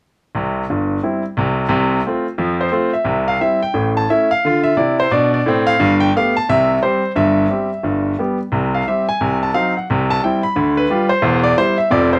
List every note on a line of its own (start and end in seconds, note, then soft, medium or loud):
0.35 0.62 C2 medium
0.35 0.63 C3 medium
0.70 0.97 G1 soft
0.70 0.97 G2 soft
1.03 1.22 G3 soft
1.03 1.22 C4 soft
1.03 1.22 E4 soft
1.37 1.64 C2 medium
1.37 1.65 C3 medium
1.69 1.99 C2 medium
1.69 1.99 C3 medium
2.06 2.25 A3 soft
2.06 2.25 C4 soft
2.06 2.25 F4 soft
2.38 2.68 F2 medium
2.38 2.68 F3 medium
2.61 2.90 C5 medium
2.71 2.91 A3 soft
2.71 2.91 C4 soft
2.71 2.92 F4 soft
2.93 3.23 E5 medium
3.05 3.35 C2 medium
3.05 3.35 C3 medium
3.28 3.39 F5 medium
3.40 3.59 G3 soft
3.40 3.60 C4 soft
3.40 3.60 E4 soft
3.40 3.59 E5 medium
3.63 3.91 G5 medium
3.74 4.04 A1 medium
3.74 4.03 A2 medium
3.97 4.08 A5 medium
4.09 4.28 A3 soft
4.09 4.28 C#4 soft
4.09 4.29 E4 soft
4.09 4.28 E5 medium
4.31 4.60 F5 medium
4.45 4.71 D3 medium
4.45 4.72 F4 medium
4.64 4.75 E5 medium
4.77 5.04 C3 medium
4.77 5.05 E4 medium
4.77 4.95 D5 medium
5.00 5.10 C5 medium
5.11 5.38 B2 medium
5.11 5.40 D4 medium
5.11 5.30 D5 medium
5.34 5.62 D5 medium
5.46 5.73 A2 medium
5.46 5.74 C4 medium
5.67 5.95 F5 medium
5.80 6.09 G1 medium
5.80 6.08 G2 medium
6.00 6.11 G5 medium
6.16 6.34 A3 soft
6.16 6.34 B3 soft
6.16 6.34 G4 soft
6.16 6.33 F5 medium
6.37 6.47 A5 medium
6.49 6.77 C2 medium
6.49 6.77 C3 medium
6.49 6.77 E5 medium
6.83 7.01 G3 soft
6.83 7.02 C4 soft
6.83 7.01 G4 soft
6.83 7.11 C5 medium
7.16 7.45 G1 medium
7.16 7.44 G2 medium
7.16 8.20 E5 medium
7.50 7.68 G3 soft
7.50 7.68 C4 soft
7.50 7.69 G4 soft
7.83 8.12 G1 soft
7.83 8.13 G2 medium
8.19 8.37 G3 soft
8.19 8.37 B3 soft
8.19 8.38 G4 soft
8.52 8.80 C2 medium
8.52 8.81 C3 medium
8.74 8.84 F5 medium
8.88 9.06 G3 soft
8.88 9.06 C4 soft
8.88 9.06 G4 soft
8.88 9.05 E5 medium
9.09 9.36 G#5 medium
9.21 9.49 C2 medium
9.21 9.49 C3 medium
9.43 9.53 A5 medium
9.54 9.73 F#3 soft
9.54 9.73 C4 soft
9.54 9.73 D#4 soft
9.54 9.72 F5 medium
9.77 9.87 F#5 soft
9.90 10.18 C2 medium
9.90 10.18 C3 medium
10.10 10.20 A5 medium
10.23 10.41 G3 soft
10.23 10.42 C4 soft
10.23 10.42 E4 soft
10.23 10.41 G5 medium
10.43 10.72 B5 medium
10.56 10.85 D2 medium
10.56 10.84 D3 medium
10.77 11.06 B4 medium
10.90 11.08 G3 medium
10.90 11.09 F4 medium
10.90 11.09 G4 soft
11.09 11.39 C5 medium
11.22 11.51 E1 medium
11.22 11.51 E2 medium
11.44 11.55 D5 medium
11.57 11.76 G3 soft
11.57 11.76 E4 soft
11.57 11.76 G4 soft
11.57 11.75 C5 medium
11.78 11.89 E5 medium
11.91 12.19 F1 medium
11.91 12.19 F2 medium
11.91 12.10 F3 soft
11.91 12.09 C4 soft
11.91 12.10 A4 soft
11.91 12.09 D5 medium
12.13 12.19 C5 medium